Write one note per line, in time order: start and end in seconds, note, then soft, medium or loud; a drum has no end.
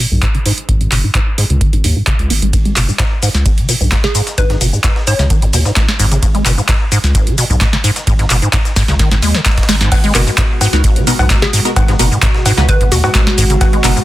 0.11 0.21 B1 loud
0.11 0.18 G#2 medium
0.23 0.27 G#2 loud
0.23 kick loud
0.23 clap loud
0.23 closed hi-hat medium
0.35 0.38 C#3 medium
0.35 closed hi-hat soft
0.46 0.52 G#2 loud
0.46 open hi-hat medium
0.58 closed hi-hat medium
0.69 0.88 G#1 loud
0.69 0.75 G#2 medium
0.69 kick loud
0.69 closed hi-hat medium
0.81 0.87 G#2 medium
0.81 closed hi-hat soft
0.92 1.02 F#1 medium
0.92 0.98 B2 medium
0.92 clap medium
0.92 open hi-hat loud
1.04 1.10 G#2 medium
1.15 1.19 G#2 loud
1.15 kick loud
1.15 clap loud
1.15 closed hi-hat medium
1.38 1.45 G#2 loud
1.38 open hi-hat loud
1.50 1.59 C#2 medium
1.50 1.56 C#3 medium
1.50 closed hi-hat soft
1.61 1.71 D#3 medium
1.61 kick loud
1.61 closed hi-hat medium
1.73 1.82 G#1 medium
1.73 1.77 G#2 medium
1.73 closed hi-hat soft
1.84 1.94 D#2 medium
1.84 1.91 G#2 medium
1.84 open hi-hat loud
1.96 2.02 G#2 medium
2.07 2.14 C#3 medium
2.07 kick loud
2.07 clap loud
2.07 closed hi-hat medium
2.19 2.29 C#2 medium
2.19 closed hi-hat soft
2.30 2.40 G#1 medium
2.30 2.34 B3 medium
2.30 open hi-hat medium
2.42 2.52 G#1 loud
2.42 2.48 G#3 medium
2.42 closed hi-hat soft
2.53 2.73 G#1 loud
2.53 2.57 G#2 medium
2.53 kick loud
2.53 closed hi-hat medium
2.53 ride medium
2.53 shaker soft
2.65 2.74 G#3 medium
2.65 closed hi-hat soft
2.76 2.87 F#1 medium
2.76 2.83 B2 medium
2.76 clap medium
2.76 open hi-hat loud
2.76 ride medium
2.76 shaker medium
2.88 2.92 G#2 medium
2.88 shaker soft
2.99 3.03 G#2 loud
2.99 kick loud
2.99 snare loud
2.99 clap loud
2.99 closed hi-hat medium
2.99 ride medium
2.99 shaker soft
3.22 3.29 G#2 loud
3.22 open hi-hat medium
3.22 ride medium
3.22 shaker medium
3.35 3.44 C#2 medium
3.35 snare soft
3.35 ride soft
3.35 shaker soft
3.46 3.59 G#1 medium
3.46 kick loud
3.46 closed hi-hat medium
3.46 ride medium
3.46 shaker soft
3.58 3.67 D#3 medium
3.58 closed hi-hat soft
3.69 3.75 B2 medium
3.69 open hi-hat loud
3.69 ride medium
3.69 shaker medium
3.81 3.90 B1 loud
3.81 3.87 G#2 medium
3.81 shaker soft
3.92 3.96 G#2 loud
3.92 kick loud
3.92 snare loud
3.92 snare medium
3.92 clap loud
3.92 closed hi-hat medium
3.92 ride medium
3.92 shaker soft
4.04 4.07 C#3 medium
4.04 4.20 G#4 medium
4.04 snare medium
4.04 closed hi-hat soft
4.04 ride soft
4.15 4.21 G#2 loud
4.15 open hi-hat medium
4.15 ride medium
4.15 shaker medium
4.27 snare medium
4.27 closed hi-hat medium
4.27 shaker soft
4.38 4.58 G#1 loud
4.38 4.45 G#2 medium
4.38 4.55 B4 medium
4.38 kick loud
4.38 closed hi-hat medium
4.38 ride medium
4.38 shaker soft
4.50 4.56 G#2 medium
4.50 snare soft
4.50 closed hi-hat soft
4.61 4.71 F#1 medium
4.61 4.68 B2 medium
4.61 open hi-hat loud
4.61 ride medium
4.61 shaker medium
4.73 4.79 G#2 medium
4.73 shaker soft
4.84 4.88 G#2 loud
4.84 kick loud
4.84 snare loud
4.84 clap loud
4.84 closed hi-hat medium
4.84 ride medium
4.84 shaker soft
4.96 snare medium
5.07 5.14 G#2 loud
5.07 5.72 C#5 medium
5.07 open hi-hat medium
5.07 ride medium
5.07 shaker medium
5.19 5.29 C#2 medium
5.19 5.25 C#3 medium
5.19 snare soft
5.19 snare medium
5.19 closed hi-hat soft
5.19 shaker soft
5.30 5.40 D#3 medium
5.30 kick loud
5.30 closed hi-hat medium
5.30 ride medium
5.30 shaker soft
5.42 5.52 G#1 medium
5.42 5.46 G#2 medium
5.42 closed hi-hat medium
5.53 5.63 D#2 loud
5.53 5.60 B2 medium
5.53 open hi-hat loud
5.53 ride medium
5.53 shaker medium
5.65 5.71 G#2 medium
5.65 snare soft
5.65 shaker soft
5.76 5.86 G#1 medium
5.76 kick loud
5.76 snare medium
5.76 snare loud
5.76 clap loud
5.76 closed hi-hat medium
5.76 ride medium
5.76 shaker soft
5.88 snare medium
5.88 closed hi-hat soft
5.99 6.19 G#1 medium
5.99 6.06 G#2 loud
5.99 open hi-hat medium
5.99 ride medium
5.99 shaker medium
6.11 6.18 C#3 medium
6.11 closed hi-hat medium
6.11 ride soft
6.11 shaker soft
6.22 6.42 G#1 loud
6.22 6.26 G#2 medium
6.22 kick loud
6.22 closed hi-hat medium
6.22 ride medium
6.22 shaker soft
6.35 6.44 G#3 medium
6.35 closed hi-hat soft
6.46 6.56 F#1 medium
6.46 6.52 B2 medium
6.46 clap medium
6.46 open hi-hat loud
6.46 ride medium
6.46 shaker medium
6.58 6.61 G#2 medium
6.58 shaker soft
6.69 6.73 G#2 loud
6.69 kick loud
6.69 snare loud
6.69 clap loud
6.69 closed hi-hat medium
6.69 ride medium
6.69 shaker soft
6.92 6.98 G#2 loud
6.92 open hi-hat medium
6.92 ride medium
6.92 shaker medium
7.04 7.13 C#2 medium
7.04 snare soft
7.04 closed hi-hat soft
7.04 ride soft
7.04 shaker soft
7.15 7.28 G#1 medium
7.15 kick loud
7.15 closed hi-hat medium
7.15 ride medium
7.15 shaker soft
7.27 7.36 D#3 medium
7.27 closed hi-hat medium
7.38 7.45 B2 medium
7.38 open hi-hat loud
7.38 ride medium
7.38 shaker medium
7.50 7.59 B1 loud
7.50 7.56 G#2 medium
7.50 shaker soft
7.61 7.65 G#2 loud
7.61 kick loud
7.61 snare loud
7.61 snare medium
7.61 clap loud
7.61 closed hi-hat medium
7.61 ride medium
7.61 shaker soft
7.73 7.77 C#3 medium
7.73 snare medium
7.73 closed hi-hat soft
7.73 ride soft
7.84 7.91 G#2 loud
7.84 open hi-hat medium
7.84 ride medium
7.84 shaker medium
7.96 snare medium
7.96 closed hi-hat medium
7.96 shaker soft
8.07 8.27 G#1 loud
8.07 8.14 G#2 medium
8.07 kick loud
8.07 closed hi-hat medium
8.07 ride medium
8.07 shaker soft
8.19 8.25 G#2 medium
8.19 snare soft
8.19 closed hi-hat soft
8.30 8.40 F#1 medium
8.30 8.37 B2 medium
8.30 clap medium
8.30 open hi-hat loud
8.30 ride medium
8.30 shaker medium
8.42 8.48 G#2 medium
8.42 closed hi-hat soft
8.42 shaker soft
8.53 8.57 G#2 loud
8.53 kick loud
8.53 snare loud
8.53 clap loud
8.53 closed hi-hat medium
8.53 ride medium
8.53 shaker soft
8.65 snare medium
8.65 closed hi-hat soft
8.65 shaker soft
8.76 8.83 G#2 loud
8.76 kick medium
8.76 snare medium
8.76 open hi-hat medium
8.76 ride medium
8.76 shaker medium
8.88 8.98 C#2 medium
8.88 8.94 C#3 medium
8.88 snare medium
8.88 snare soft
8.88 closed hi-hat soft
8.88 shaker soft
8.99 9.09 D#3 medium
8.99 kick loud
8.99 snare medium
8.99 closed hi-hat medium
8.99 ride medium
8.99 shaker soft
9.11 9.21 G#1 medium
9.11 9.15 G#2 medium
9.11 snare medium
9.11 closed hi-hat medium
9.11 shaker soft
9.22 9.33 D#2 medium
9.22 9.36 G#3 medium
9.22 snare medium
9.22 open hi-hat loud
9.22 ride medium
9.22 shaker medium
9.34 9.41 C#3 loud
9.34 snare soft
9.34 snare medium
9.34 closed hi-hat soft
9.34 shaker soft
9.46 9.50 G#3 medium
9.46 kick loud
9.46 snare medium
9.46 clap loud
9.46 closed hi-hat medium
9.46 ride medium
9.46 shaker soft
9.52 snare medium
9.52 ride medium
9.58 kick medium
9.58 snare medium
9.58 closed hi-hat soft
9.58 ride medium
9.63 snare medium
9.63 ride medium
9.69 9.88 G#1 medium
9.69 9.75 G#3 loud
9.69 snare loud
9.69 open hi-hat medium
9.69 ride medium
9.69 shaker medium
9.81 9.90 G#2 medium
9.81 snare medium
9.81 closed hi-hat medium
9.81 shaker soft
9.92 10.11 G#1 loud
9.92 9.96 G#2 medium
9.92 14.04 B2 medium
9.92 14.04 G#3 medium
9.92 14.04 F#4 loud
9.92 kick loud
9.92 closed hi-hat medium
9.92 ride medium
9.92 cowbell medium
9.92 crash loud
9.92 shaker soft
10.04 10.13 G#3 medium
10.04 closed hi-hat soft
10.15 10.25 F#1 medium
10.15 10.21 B2 medium
10.15 10.24 B3 medium
10.15 10.24 D#4 medium
10.15 10.24 F#4 medium
10.15 10.24 A#4 loud
10.15 clap medium
10.15 open hi-hat loud
10.15 ride medium
10.15 shaker medium
10.27 10.31 G#2 medium
10.27 shaker soft
10.38 10.42 G#2 loud
10.38 kick loud
10.38 snare loud
10.38 clap loud
10.38 closed hi-hat medium
10.38 ride medium
10.38 shaker soft
10.61 10.68 G#2 loud
10.61 open hi-hat medium
10.61 ride medium
10.61 cowbell soft
10.61 shaker medium
10.73 10.82 C#2 medium
10.73 10.82 B3 medium
10.73 10.82 D#4 medium
10.73 10.82 F#4 medium
10.73 10.82 A#4 loud
10.73 snare soft
10.73 closed hi-hat soft
10.73 ride soft
10.73 shaker soft
10.84 10.98 G#1 medium
10.84 kick loud
10.84 closed hi-hat medium
10.84 ride loud
10.84 shaker soft
10.96 11.05 D#3 medium
10.96 closed hi-hat medium
11.07 11.14 B2 medium
11.07 11.17 B3 medium
11.07 11.17 D#4 medium
11.07 11.17 F#4 medium
11.07 11.17 A#4 medium
11.07 open hi-hat loud
11.07 ride medium
11.07 shaker medium
11.19 11.29 B1 loud
11.19 11.25 G#2 medium
11.19 cowbell medium
11.19 shaker soft
11.30 11.34 G#2 loud
11.30 kick loud
11.30 snare loud
11.30 snare medium
11.30 clap loud
11.30 closed hi-hat medium
11.30 ride medium
11.30 shaker soft
11.42 11.46 C#3 medium
11.42 11.59 G#4 medium
11.42 snare medium
11.42 closed hi-hat soft
11.42 ride soft
11.53 11.60 G#2 loud
11.53 open hi-hat loud
11.53 ride medium
11.53 shaker medium
11.65 11.71 B3 medium
11.65 11.71 D#4 medium
11.65 11.71 F#4 medium
11.65 11.71 A#4 loud
11.65 snare medium
11.65 closed hi-hat medium
11.65 shaker soft
11.76 11.96 G#1 loud
11.76 11.83 G#2 medium
11.76 kick loud
11.76 closed hi-hat medium
11.76 ride medium
11.76 cowbell medium
11.76 shaker soft
11.88 11.95 G#2 medium
11.88 snare soft
11.88 closed hi-hat soft
11.99 12.10 F#1 medium
11.99 12.06 B2 medium
11.99 12.09 B3 loud
11.99 12.09 D#4 medium
11.99 12.09 F#4 medium
11.99 12.09 A#4 loud
11.99 open hi-hat loud
11.99 ride medium
11.99 shaker medium
12.11 12.18 G#2 medium
12.11 shaker soft
12.22 12.27 G#2 loud
12.22 kick loud
12.22 snare loud
12.22 clap loud
12.22 closed hi-hat medium
12.22 ride medium
12.22 shaker soft
12.34 snare medium
12.46 12.52 G#2 loud
12.46 open hi-hat loud
12.46 ride medium
12.46 cowbell soft
12.46 shaker medium
12.57 12.67 C#2 medium
12.57 12.64 C#3 medium
12.57 12.66 B3 medium
12.57 12.66 D#4 medium
12.57 12.66 F#4 medium
12.57 12.66 B4 loud
12.57 snare medium
12.57 snare soft
12.57 closed hi-hat soft
12.57 shaker soft
12.69 12.79 D#3 medium
12.69 12.86 B4 medium
12.69 kick loud
12.69 closed hi-hat medium
12.69 ride medium
12.69 shaker soft
12.81 12.90 G#1 medium
12.81 12.84 G#2 medium
12.81 closed hi-hat medium
12.92 13.02 D#2 medium
12.92 12.98 B2 medium
12.92 12.99 F#4 medium
12.92 open hi-hat loud
12.92 ride medium
12.92 shaker medium
13.04 13.10 G#2 medium
13.04 13.11 F#4 medium
13.04 snare soft
13.04 cowbell medium
13.04 shaker soft
13.15 13.25 G#1 medium
13.15 kick loud
13.15 snare loud
13.15 snare medium
13.15 clap loud
13.15 closed hi-hat medium
13.15 ride medium
13.15 shaker soft
13.27 snare medium
13.27 closed hi-hat soft
13.38 13.58 G#1 medium
13.38 13.45 G#2 loud
13.38 open hi-hat loud
13.38 ride medium
13.38 shaker medium
13.50 13.56 C#3 medium
13.50 closed hi-hat medium
13.50 ride soft
13.50 shaker soft
13.61 13.81 G#1 loud
13.61 13.65 G#2 medium
13.61 kick loud
13.61 closed hi-hat medium
13.61 ride medium
13.61 cowbell medium
13.61 shaker soft
13.73 13.82 G#3 medium
13.73 closed hi-hat soft
13.84 13.94 F#1 medium
13.84 13.91 B2 medium
13.84 13.93 B3 medium
13.84 13.93 D#4 medium
13.84 13.93 F#4 medium
13.84 13.93 A#4 medium
13.84 clap medium
13.84 open hi-hat loud
13.84 ride medium
13.84 shaker medium
13.96 14.00 G#2 medium
13.96 shaker soft